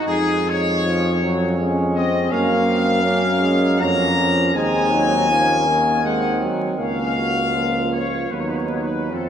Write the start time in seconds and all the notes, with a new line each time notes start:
Already playing: D#4
0.06 F2 G#3 G#4
0.49 C#5
0.85 F3 C#4
1.22 F#3
1.59 G#3 C#4
1.95 C4 D#5
2.30 F#2 A#3 C#4 F5
2.65 C4
3.02 A#3 C#4
3.41 G#3
3.79 F2 F#3 A#3 C#4 A#5
4.17 F3
4.54 D#2 G#3 C4 D#4 G#5
4.91 F#3
5.29 F3 A#3 C#4
5.67 D#3
6.04 G#3 C4 F#5
6.41 F#3
6.78 C#2 A#3 C#4 F5
7.17 F#4
7.54 F3 A#3 F4
7.93 C#5
8.30 D#2 F#3 B3 D#4 B4
8.39 C#5
8.48 B4
8.56 C#5
8.65 B4
8.71 F#3 C#5
8.82 B4
9.12 F2 F3 C4 A4